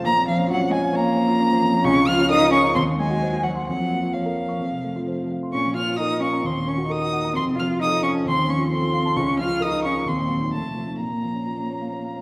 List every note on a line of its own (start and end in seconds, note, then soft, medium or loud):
0.04 1.81 A#1 medium
0.04 0.13 A#3 medium
0.04 0.27 A#5 loud
0.15 0.33 F2 medium
0.27 0.45 F3 medium
0.27 0.48 F3 medium
0.27 0.49 F5 medium
0.38 0.56 C#4 medium
0.47 0.57 F#3 loud
0.47 0.66 F4 medium
0.47 0.72 F#5 loud
0.60 0.78 C#4 medium
0.70 0.78 G#3 medium
0.70 0.89 C#5 medium
0.70 0.97 G#5 medium
0.82 1.01 F5 medium
0.93 1.83 A#3 loud
0.93 1.12 C#5 medium
0.93 1.85 A#5 loud
1.05 1.23 F5 medium
1.16 1.35 C#5 medium
1.28 1.46 F4 medium
1.40 1.58 C#4 medium
1.51 1.69 F3 medium
1.62 1.80 F2 medium
1.73 1.84 F3 medium
1.84 2.72 C#2 medium
1.84 2.06 C#4 loud
1.84 2.09 C#6 loud
1.95 2.14 C#3 medium
2.07 2.25 F3 medium
2.07 2.29 F4 medium
2.07 2.30 F6 loud
2.19 2.37 C#4 medium
2.29 2.51 D#4 loud
2.29 2.48 A#4 medium
2.29 2.52 D#6 loud
2.40 2.59 F4 medium
2.51 2.59 C#4 medium
2.51 2.70 C#5 medium
2.51 2.74 C#6 loud
2.64 2.75 A#5 medium
2.75 3.64 D#2 medium
2.75 2.83 C4 loud
2.75 2.83 C6 loud
2.87 3.05 D#3 medium
2.98 3.17 F#3 soft
2.98 3.45 G#3 medium
2.98 3.44 G#5 medium
3.10 3.28 F#4 medium
3.22 3.40 C5 medium
3.33 3.51 F#4 medium
3.43 3.67 F#3 medium
3.43 3.66 F#5 medium
3.43 3.63 F#5 medium
3.55 3.67 C6 medium
3.67 4.57 F2 medium
3.67 4.12 F#3 medium
3.67 4.15 F#5 medium
3.79 3.97 F3 soft
3.90 4.09 A#3 soft
4.03 4.21 F4 soft
4.13 5.27 F3 medium
4.13 4.32 C#5 soft
4.13 5.29 F5 medium
4.26 4.44 A#4 medium
4.37 4.55 F5 soft
4.49 4.60 C#6 soft
4.59 5.49 F2 medium
4.71 4.89 C3 soft
4.84 5.02 A3 soft
4.96 5.14 F4 soft
5.07 5.25 C5 soft
5.20 5.37 A4 soft
5.31 5.49 F5 soft
5.43 5.53 C6 soft
5.52 6.42 A#2 medium
5.52 5.75 C#4 medium
5.52 5.74 C#6 medium
5.65 5.82 F3 soft
5.74 5.94 A#3 soft
5.74 5.99 F4 medium
5.74 5.98 F6 medium
5.87 6.05 F4 soft
5.97 6.22 D#4 medium
5.97 6.17 A#4 soft
5.97 6.21 D#6 medium
6.12 6.29 F4 soft
6.21 6.43 C#4 medium
6.21 6.40 F5 soft
6.21 6.47 C#6 medium
6.33 6.44 A#5 soft
6.41 7.32 D#2 medium
6.41 6.65 C4 medium
6.45 6.70 C6 medium
6.55 6.73 A#2 soft
6.66 6.85 A#3 soft
6.66 6.86 C#4 medium
6.66 6.92 C#6 medium
6.78 6.96 F#4 soft
6.86 7.35 D#4 medium
6.86 7.08 A#4 soft
6.91 7.35 D#6 medium
7.01 7.19 F#4 soft
7.13 7.31 F#5 medium
7.25 7.35 A#5 medium
7.34 8.23 F2 medium
7.34 7.57 C4 medium
7.34 7.44 C6 medium
7.47 7.65 C3 soft
7.55 7.76 F3 soft
7.55 7.81 F4 medium
7.59 7.67 F6 medium
7.69 7.87 F4 medium
7.80 8.05 D#4 medium
7.80 7.98 A4 soft
7.80 8.03 D#6 loud
7.92 8.10 F4 medium
8.03 8.27 C#4 medium
8.03 8.21 F5 medium
8.03 8.12 C#6 medium
8.14 8.25 A5 soft
8.26 9.13 D#2 medium
8.26 8.50 C4 medium
8.26 8.51 C6 loud
8.36 8.55 D#3 medium
8.48 8.66 F3 soft
8.48 8.70 C#4 medium
8.48 8.71 C#6 medium
8.59 8.77 F4 medium
8.70 9.20 C4 medium
8.70 8.89 A4 medium
8.70 9.18 C6 medium
8.83 9.00 F4 soft
8.93 9.11 F5 medium
9.05 9.16 A5 medium
9.16 10.04 C#2 medium
9.16 9.42 C#4 medium
9.16 9.39 C#6 medium
9.27 9.45 C#3 soft
9.38 9.56 F3 soft
9.38 9.65 F4 medium
9.38 9.63 F6 medium
9.49 9.68 F4 soft
9.60 9.87 D#4 medium
9.60 9.79 A#4 medium
9.60 9.84 D#6 loud
9.72 9.90 F4 medium
9.83 10.07 C#4 medium
9.83 10.01 F5 soft
9.83 10.09 C#6 medium
9.95 10.06 A#5 soft
10.06 10.51 D#2 medium
10.06 10.52 C4 medium
10.06 10.52 C6 medium
10.18 10.36 A#2 soft
10.29 10.47 F#3 soft
10.41 10.52 D#4 soft
10.51 10.97 F2 soft
10.51 11.01 A3 soft
10.51 10.98 A5 medium
10.64 10.83 C3 soft
10.74 10.94 F3 soft
10.86 10.98 D#4 soft
10.98 12.22 A#2 soft
10.98 12.22 A#3 soft
10.98 12.22 A#5 medium
11.11 11.30 A#3 soft
11.22 11.41 F3 soft
11.34 11.53 C#4 soft
11.45 11.65 F4 soft
11.58 11.77 C#4 soft
11.70 11.89 C#5 soft
11.81 12.00 F5 soft
11.93 12.12 C#5 soft
12.04 12.22 F5 soft
12.16 12.22 C#5 soft